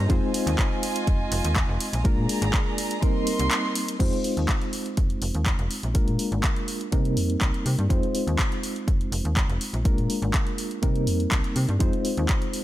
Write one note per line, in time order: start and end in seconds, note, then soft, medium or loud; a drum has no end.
0.09 0.20 F2 loud
0.09 2.00 G#3 medium
0.09 2.00 C4 medium
0.09 2.00 D#4 medium
0.09 2.03 F4 medium
0.09 2.00 F4 medium
0.09 2.01 C5 loud
0.09 2.03 D#5 medium
0.09 2.03 G#5 medium
0.09 kick loud
0.09 closed hi-hat medium
0.09 ride medium
0.34 open hi-hat loud
0.34 ride medium
0.47 0.56 D#2 loud
0.47 closed hi-hat medium
0.59 kick loud
0.59 clap loud
0.59 closed hi-hat medium
0.59 ride medium
0.83 open hi-hat loud
0.83 ride medium
0.96 closed hi-hat medium
1.07 1.27 F1 medium
1.07 kick loud
1.07 closed hi-hat medium
1.07 ride medium
1.32 1.42 F1 medium
1.32 open hi-hat loud
1.32 ride medium
1.44 1.64 D#2 medium
1.44 closed hi-hat medium
1.56 kick loud
1.56 clap loud
1.56 closed hi-hat medium
1.56 ride medium
1.69 1.78 F1 loud
1.80 open hi-hat loud
1.80 ride medium
1.93 2.19 A#1 medium
1.93 closed hi-hat medium
2.04 2.98 G#3 medium
2.04 2.98 A#3 medium
2.04 2.98 D4 medium
2.04 2.98 F4 medium
2.04 3.02 G#4 medium
2.04 2.98 A#4 medium
2.04 3.02 D5 medium
2.04 3.02 A#5 medium
2.04 kick loud
2.04 closed hi-hat medium
2.04 ride medium
2.17 2.27 A#2 loud
2.29 open hi-hat loud
2.29 ride medium
2.42 2.51 G#1 loud
2.42 closed hi-hat medium
2.54 kick loud
2.54 clap loud
2.54 closed hi-hat medium
2.54 ride medium
2.78 open hi-hat loud
2.78 ride medium
2.91 closed hi-hat medium
3.02 3.95 G3 medium
3.02 3.95 A#3 medium
3.02 3.95 C4 medium
3.02 3.96 D#4 medium
3.02 3.99 A#4 medium
3.02 3.96 A#4 medium
3.02 3.99 D#5 medium
3.02 3.99 C6 loud
3.02 kick loud
3.02 closed hi-hat medium
3.02 ride medium
3.27 open hi-hat loud
3.27 ride medium
3.39 3.49 C2 medium
3.39 closed hi-hat medium
3.51 clap loud
3.51 closed hi-hat medium
3.51 ride medium
3.75 open hi-hat loud
3.75 ride medium
3.88 closed hi-hat medium
3.99 4.10 F2 medium
3.99 5.90 G#3 medium
3.99 5.90 C4 medium
3.99 5.91 D#4 medium
3.99 5.91 F4 medium
3.99 5.91 C5 loud
3.99 kick loud
3.99 closed hi-hat medium
3.99 crash medium
4.13 closed hi-hat soft
4.24 open hi-hat loud
4.37 4.46 D#2 loud
4.37 closed hi-hat soft
4.49 kick loud
4.49 clap loud
4.49 closed hi-hat medium
4.62 closed hi-hat soft
4.73 open hi-hat loud
4.86 closed hi-hat soft
4.97 5.17 F1 medium
4.97 kick loud
4.97 closed hi-hat medium
5.10 closed hi-hat soft
5.22 5.32 F1 medium
5.22 open hi-hat loud
5.35 5.54 D#2 medium
5.35 closed hi-hat soft
5.46 kick loud
5.46 clap loud
5.46 closed hi-hat medium
5.59 5.68 F1 loud
5.59 closed hi-hat soft
5.71 open hi-hat loud
5.83 6.09 A#1 medium
5.83 closed hi-hat soft
5.94 6.88 G#3 medium
5.94 6.88 A#3 medium
5.94 6.88 D4 medium
5.94 6.88 F4 medium
5.94 6.88 A#4 medium
5.94 kick loud
5.94 closed hi-hat medium
6.08 6.17 A#2 loud
6.08 closed hi-hat soft
6.19 open hi-hat loud
6.32 6.41 G#1 loud
6.32 closed hi-hat soft
6.44 kick loud
6.44 clap loud
6.44 closed hi-hat medium
6.56 closed hi-hat soft
6.68 open hi-hat loud
6.81 closed hi-hat soft
6.92 7.18 C3 medium
6.92 7.85 G3 medium
6.92 7.85 A#3 medium
6.92 7.86 C4 medium
6.92 7.86 D#4 medium
6.92 7.86 A#4 medium
6.92 kick loud
6.92 closed hi-hat medium
7.05 closed hi-hat soft
7.17 7.37 F2 medium
7.17 open hi-hat loud
7.30 closed hi-hat soft
7.41 7.52 C2 medium
7.41 kick loud
7.41 clap loud
7.41 closed hi-hat medium
7.54 closed hi-hat soft
7.66 7.76 C3 loud
7.66 open hi-hat loud
7.79 7.88 G2 medium
7.79 closed hi-hat soft
7.89 8.00 F2 loud
7.89 9.80 G#3 medium
7.89 9.81 C4 medium
7.89 9.81 D#4 medium
7.89 9.81 F4 medium
7.89 9.81 C5 loud
7.89 kick loud
7.89 closed hi-hat medium
8.03 closed hi-hat soft
8.15 open hi-hat loud
8.27 8.37 D#2 loud
8.27 closed hi-hat soft
8.39 kick loud
8.39 clap loud
8.39 closed hi-hat medium
8.52 closed hi-hat soft
8.63 open hi-hat loud
8.76 closed hi-hat soft
8.88 9.07 F1 medium
8.88 kick loud
8.88 closed hi-hat medium
9.01 closed hi-hat soft
9.12 9.22 F1 medium
9.12 open hi-hat loud
9.25 9.44 D#2 medium
9.25 closed hi-hat soft
9.36 kick loud
9.36 clap loud
9.36 closed hi-hat medium
9.49 9.58 F1 loud
9.49 closed hi-hat soft
9.61 open hi-hat loud
9.73 9.99 A#1 medium
9.73 closed hi-hat soft
9.85 10.78 G#3 medium
9.85 10.78 A#3 medium
9.85 10.78 D4 medium
9.85 10.79 F4 medium
9.85 10.79 A#4 medium
9.85 kick loud
9.85 closed hi-hat medium
9.98 10.07 A#2 loud
9.98 closed hi-hat soft
10.10 open hi-hat loud
10.22 10.32 G#1 loud
10.22 closed hi-hat soft
10.34 kick loud
10.34 clap loud
10.34 closed hi-hat medium
10.47 closed hi-hat soft
10.58 open hi-hat loud
10.71 closed hi-hat soft
10.82 11.09 C3 medium
10.82 11.75 G3 medium
10.82 11.76 A#3 medium
10.82 11.76 C4 medium
10.82 11.76 D#4 medium
10.82 11.76 A#4 medium
10.82 kick loud
10.82 closed hi-hat medium
10.96 closed hi-hat soft
11.07 11.27 F2 medium
11.07 open hi-hat loud
11.20 closed hi-hat soft
11.32 11.42 C2 medium
11.32 kick loud
11.32 clap loud
11.32 closed hi-hat medium
11.44 closed hi-hat soft
11.56 11.66 C3 loud
11.56 open hi-hat loud
11.69 11.78 G2 medium
11.69 closed hi-hat soft
11.79 11.91 F2 loud
11.79 12.64 G#3 medium
11.79 12.64 C4 medium
11.79 12.64 D#4 medium
11.79 12.64 F4 medium
11.79 12.64 C5 loud
11.79 kick loud
11.79 closed hi-hat medium
11.93 closed hi-hat soft
12.05 open hi-hat loud
12.17 12.27 D#2 loud
12.17 closed hi-hat soft
12.29 kick loud
12.29 clap loud
12.29 closed hi-hat medium
12.42 closed hi-hat soft
12.54 open hi-hat loud